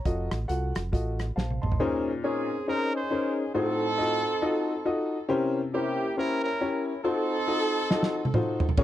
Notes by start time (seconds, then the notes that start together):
Already playing: C#5 A#5
0.05 F1 F4 F#4 A4 D#5, kick, closed hi-hat
0.31 A1, cross-stick, closed hi-hat
0.48 C2 F4 F#4 A4 F#5, closed hi-hat
0.75 F1, cross-stick, closed hi-hat
0.92 A1 F4 F#4 A4 D#5, kick, closed hi-hat
1.19 cross-stick, closed hi-hat
1.36 A#1 C5 F5 A5, snare
1.50 high tom
1.61 A1 D#5 A5 C6, mid tom
1.72 floor tom
1.80 A#2 C#4 D#4 G#4 A#4 C5
2.23 C4 C#4 D#4 G#4 A#4 C#5
2.67 C#4 D#4 G#4 A#4 C5
2.94 D#4 G#4 C5
3.10 C#4 D#4 G#4 A#4 C5
3.54 A2 C4 D#4 F4 F#4 A4 C5
3.98 D#4 F4 F#4 A4 D#5
4.42 D#4 F4 F#4 A4 D#5
4.85 D#4 F4 F#4 A4 D#5
5.29 C3 C#4 E4 G4 A#4 C5
5.73 A#3 C#4 E4 G4 A#4 C5
6.17 C#4 E4 G4 A#4 C5
6.43 C#4 E4 A#4
6.61 C#4 E4 G4 A#4 C#5
7.04 C4 D#4 F4 F#4 A4 C5
7.47 D#4 F4 F#4 A4 D#5
7.91 D#4 F4 F#4 A4 D#5, snare
8.03 snare
8.25 high tom
8.34 D#4 F4 F#4 A4 C5, mid tom
8.60 floor tom
8.69 floor tom
8.77 A#1 A#2 C#4 F4 G#4 A#4 C#5, kick, ride bell